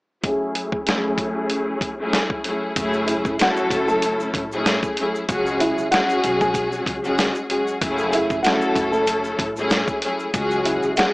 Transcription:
0.23 string section F#3 A3 C#4 E4 G#4, kick, closed hi-hat
0.55 closed hi-hat
0.72 kick
0.85 string section F#3 A3 C#4 E4 G#4, closed hi-hat
0.89 snare
1.18 kick, closed hi-hat
1.50 closed hi-hat
1.81 kick, closed hi-hat
1.98 string section F#3 A3 C#4 E4 G#4
2.13 snare, closed hi-hat
2.30 kick
2.44 string section F#3 A3 C#4 E4 G#4, closed hi-hat
2.76 upright bass F#1, string section F#3 A3 C#4 E4 G#4, kick, closed hi-hat, shaker
2.93 shaker
3.07 nylon-string guitar E4 E5, closed hi-hat, shaker
3.25 upright bass A1, kick, shaker
3.38 string section F#3 A3 C#4 E4 A4, nylon-string guitar F#5, snare, closed hi-hat, shaker
3.43 nylon-string guitar F#4
3.57 shaker
3.70 upright bass F#1, kick, closed hi-hat, shaker
3.88 nylon-string guitar A4 A5, shaker
4.02 closed hi-hat, shaker
4.20 shaker
4.34 upright bass A1, kick, closed hi-hat
4.52 string section F#3 A3 C#4 E4 G#4, shaker
4.66 snare, closed hi-hat, shaker
4.83 kick, shaker
4.97 string section F#3 A3 C#4 E4 G#4, closed hi-hat
5.15 shaker
5.26 upright bass C#2, string section F#3 G#3 C#4 F#4 G#4, kick, closed hi-hat, shaker
5.46 shaker
5.60 nylon-string guitar E4 E5, closed hi-hat, shaker
5.78 upright bass C#2, shaker
5.91 string section F#3 G#3 C#4 F#4 G#4, nylon-string guitar F#4 F#5, snare, closed hi-hat, shaker
6.10 shaker
6.24 upright bass B1, closed hi-hat, shaker
6.41 nylon-string guitar G#4 G#5, kick, shaker
6.54 kick, closed hi-hat, shaker
6.72 shaker
6.86 upright bass C#2, kick, closed hi-hat
7.02 string section F#3 G#3 C#4 F#4 G#4, shaker
7.18 snare, closed hi-hat, shaker
7.35 shaker
7.48 string section F#3 G#3 C#4 F#4 G#4, closed hi-hat
7.67 shaker
7.81 upright bass F#1, string section F#3 A3 C#4 E4 G#4, kick, closed hi-hat, shaker
7.98 shaker
8.13 nylon-string guitar E4 E5, closed hi-hat, shaker
8.30 upright bass A1, kick, shaker
8.43 string section F#3 A3 C#4 E4 A4, nylon-string guitar F#4 F#5, snare, closed hi-hat, shaker
8.61 shaker
8.76 upright bass F#1, kick, closed hi-hat, shaker
8.92 nylon-string guitar A4 A5, shaker
9.07 closed hi-hat, shaker
9.24 shaker
9.39 upright bass A1, kick, closed hi-hat
9.56 string section F#3 A3 C#4 E4 G#4, shaker
9.70 snare, closed hi-hat, shaker
9.87 kick, shaker
10.02 string section F#3 A3 C#4 E4 G#4, closed hi-hat
10.20 shaker
10.31 upright bass C#2, string section F#3 G#3 C#4 F#4 G#4, kick, closed hi-hat, shaker
10.51 shaker
10.65 nylon-string guitar E4 E5, closed hi-hat, shaker
10.83 upright bass C#2, shaker
10.96 string section F#3 G#3 C#4 F#4 G#4, nylon-string guitar F#4 F#5, snare, closed hi-hat, shaker

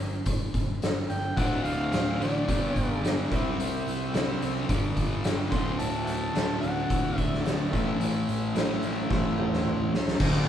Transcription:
0.00 picked electric bass G1
0.26 picked electric bass G1, kick, closed hi-hat
0.54 picked electric bass G1, kick, closed hi-hat
0.82 picked electric bass G1, snare, closed hi-hat
1.09 picked electric bass G1, harmonica G5, closed hi-hat
1.36 picked electric bass D1, distorted electric guitar D2 A2 D3, tonewheel organ F#4 A4 D5, harmonica F#5, kick, closed hi-hat
1.64 picked electric bass D1, harmonica F5, closed hi-hat
1.92 picked electric bass D1, snare, closed hi-hat
2.19 picked electric bass A1, distorted electric guitar A2 D3, closed hi-hat
2.23 distorted electric guitar D2, harmonica D5
2.46 picked electric bass G1, distorted electric guitar G2 D3 G3, tonewheel organ G4 D5, kick, closed hi-hat
2.51 tonewheel organ B4
2.76 picked electric bass G1, kick, closed hi-hat
3.03 picked electric bass G1, snare, closed hi-hat
3.30 picked electric bass C2, distorted electric guitar C3 G3 C4, tonewheel organ G4 C5 E5, kick, closed hi-hat
3.58 picked electric bass C2, closed hi-hat
3.87 picked electric bass C2, closed hi-hat
4.13 picked electric bass C2, distorted electric guitar C3 G3 C4, snare, closed hi-hat
4.42 picked electric bass C2, closed hi-hat
4.68 picked electric bass G1, distorted electric guitar G2 D3, tonewheel organ B4, kick, closed hi-hat
4.72 distorted electric guitar G3, tonewheel organ G4 D5
4.97 picked electric bass G1, kick, closed hi-hat
5.24 picked electric bass G1, snare, closed hi-hat
5.51 picked electric bass D1, distorted electric guitar D2 A2 D3, tonewheel organ F#4 A4 D5, harmonica C6, kick, closed hi-hat
5.79 picked electric bass D1, harmonica A5, closed hi-hat
6.05 picked electric bass D1, harmonica E5 F#5 A5, closed hi-hat
6.34 picked electric bass D1, distorted electric guitar D2 A2 D3, snare, closed hi-hat
6.61 picked electric bass D1, harmonica F#5, closed hi-hat
6.90 picked electric bass D1, kick, closed hi-hat
7.18 picked electric bass D1, harmonica E5, kick, closed hi-hat
7.34 snare
7.46 picked electric bass D1, snare, closed hi-hat
7.72 picked electric bass A1, distorted electric guitar A2 E3 A3, tonewheel organ E4 A4 C#5, kick, closed hi-hat
8.01 picked electric bass A1, closed hi-hat
8.28 picked electric bass A1, closed hi-hat
8.54 picked electric bass A1, distorted electric guitar A2 E3 A3, snare, closed hi-hat
8.83 picked electric bass A1, closed hi-hat
9.11 picked electric bass A1, kick, snare
9.38 picked electric bass A1, mid tom
9.53 snare
9.65 picked electric bass A1, mid tom
9.93 picked electric bass C#2, snare
10.08 snare
10.20 picked electric bass D1, distorted electric guitar D2, tonewheel organ G4 A#4 D#5, kick, crash
10.40 tonewheel organ F#4 A4 D5

